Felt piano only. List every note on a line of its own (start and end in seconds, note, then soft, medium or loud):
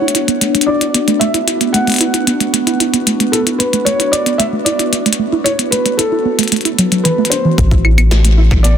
0.00 0.70 C#5 medium
0.66 1.22 D5 medium
1.20 1.75 E5 medium
1.73 2.76 F#5 medium
3.32 3.38 A4 medium
3.58 3.87 B4 medium
3.85 4.13 C#5 medium
4.12 4.37 D5 medium
4.38 4.44 E5 loud
4.65 5.15 D5 medium
5.44 5.50 C#5 loud
5.71 5.99 B4 medium
5.97 7.27 A4 medium
7.04 7.29 B4 medium
7.30 8.68 C5 medium
8.63 8.78 D5 loud